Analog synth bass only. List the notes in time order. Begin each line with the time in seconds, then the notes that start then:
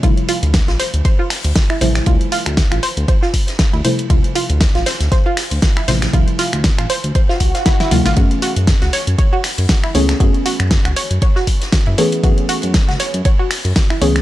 0.03 D2
0.43 D2
0.68 A1
0.94 D2
1.45 D2
1.81 A1
2.07 D2
2.46 D2
2.72 A1
2.97 D2
3.73 D2
4.10 D2
4.50 D2
4.75 A1
5.00 D2
5.51 D2
5.88 A1
6.13 D2
6.53 D2
6.79 A1
7.04 D2
7.41 C2
7.91 D2
8.06 A1
8.17 F#2
8.56 F#2
8.82 C#2
9.07 F#2
9.58 F#2
9.95 C#2
10.20 F#2
10.60 F#2
10.85 C#2
11.11 F#2
11.87 F#2
12.24 F#2
12.63 F#2
12.89 C#2
13.14 F#2
13.65 F#2
14.02 C#2